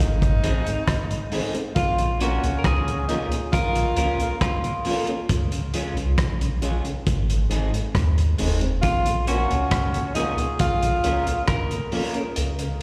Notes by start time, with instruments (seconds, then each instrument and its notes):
0.00 sub bass G#1, tenor saxophone D#4
0.22 tonewheel organ G#2, kick, closed hi-hat
0.43 sub bass A#1, tonewheel organ D#3 G#3 C4, clean electric guitar G#3 C4 D#4 G#4, closed hi-hat
0.67 tonewheel organ G#2, closed hi-hat
0.88 kick, cross-stick, closed hi-hat
1.11 tonewheel organ G#2, closed hi-hat
1.32 tonewheel organ D#3 G#3 C4, clean electric guitar G#3 C4 D#4 G#4, open hi-hat
1.54 tonewheel organ G#3 C4, closed hi-hat
1.75 sub bass A#1, tenor saxophone F4, clean electric guitar F4, kick, closed hi-hat
1.98 tonewheel organ A#2, closed hi-hat
2.20 tonewheel organ F3 A#3 C#4, clean electric guitar A#3 C#4 F4 F#4 A#4, tenor saxophone C#4, closed hi-hat
2.43 sub bass C#2, tonewheel organ A#2, closed hi-hat
2.59 clean electric guitar A#4
2.64 sub bass C#2, clean electric guitar G#4, kick, cross-stick, closed hi-hat
2.87 tonewheel organ A#2, closed hi-hat
3.08 tonewheel organ F3 A#3 C#4, clean electric guitar A#3 C#4 F4 A#4, tenor saxophone D#4, closed hi-hat
3.32 tonewheel organ A#2, closed hi-hat
3.52 sub bass A#1, tenor saxophone F4, clean electric guitar A#4, kick, closed hi-hat
3.75 tonewheel organ A#2, closed hi-hat
3.96 sub bass C#2, tonewheel organ F3 A#3 C#4, clean electric guitar A#3 C#4 F4 A#4, closed hi-hat
4.20 tonewheel organ A#2, closed hi-hat
4.41 clean electric guitar F4, kick, cross-stick, closed hi-hat
4.64 tonewheel organ A#2, closed hi-hat
4.85 tonewheel organ F3 A#3 C#4, clean electric guitar A#3 C#4 F4 A#4, open hi-hat
5.07 tonewheel organ A#3 C#4, closed hi-hat
5.29 sub bass C#2, kick, closed hi-hat
5.52 tonewheel organ C#3, closed hi-hat
5.74 tonewheel organ F3 G#3 C#4, clean electric guitar G#3 C#4 F4 G#4, closed hi-hat
5.97 sub bass C2, tonewheel organ C#3, closed hi-hat
6.18 sub bass A#1, kick, cross-stick, closed hi-hat
6.41 tonewheel organ C#3, closed hi-hat
6.62 tonewheel organ F3 G#3 C#4, clean electric guitar G#3 C#4 F4 G#4, closed hi-hat
6.84 tonewheel organ C#3, closed hi-hat
7.07 sub bass G#1, kick, closed hi-hat
7.29 tonewheel organ G#2, closed hi-hat
7.49 sub bass G#1, tonewheel organ D#3 G#3 C4, clean electric guitar G#3 C4 D#4 G#4, closed hi-hat
7.73 tonewheel organ G#2, closed hi-hat
7.95 sub bass D#2, kick, cross-stick, closed hi-hat
8.18 tonewheel organ G#2, closed hi-hat
8.38 sub bass F1, tonewheel organ D#3 G#3 C4, clean electric guitar G#3 C4 D#4 G#4, open hi-hat
8.61 tonewheel organ G#3 C4, closed hi-hat
8.81 sub bass A#1, tenor saxophone F4, clean electric guitar F4, kick, closed hi-hat
9.06 tonewheel organ A#2, closed hi-hat
9.27 tonewheel organ F3 A#3 C#4, clean electric guitar A#3 C#4 F4 F#4 A#4, tenor saxophone C#4, closed hi-hat
9.50 sub bass C#2, tonewheel organ A#2, closed hi-hat
9.71 sub bass C#2, kick, cross-stick, closed hi-hat
9.94 tonewheel organ A#2, closed hi-hat
10.14 tonewheel organ F3 A#3 C#4, clean electric guitar A#3 C#4 F4 G#4 A#4, tenor saxophone D#4, closed hi-hat
10.38 tonewheel organ A#2, closed hi-hat
10.59 sub bass A#1, tenor saxophone F4, kick, closed hi-hat
10.82 tonewheel organ A#2, closed hi-hat
11.04 sub bass C#2, tonewheel organ F3 A#3 C#4, clean electric guitar A#3 C#4 F4 A#4, closed hi-hat
11.27 tonewheel organ A#2, closed hi-hat
11.48 clean electric guitar A#4, kick, cross-stick, closed hi-hat
11.71 tonewheel organ A#2, closed hi-hat
11.92 tonewheel organ F3 A#3 C#4, clean electric guitar A#3 C#4 F4 A#4, open hi-hat
12.14 tonewheel organ A#3 C#4, closed hi-hat
12.36 sub bass C#2, closed hi-hat
12.59 tonewheel organ C#3, closed hi-hat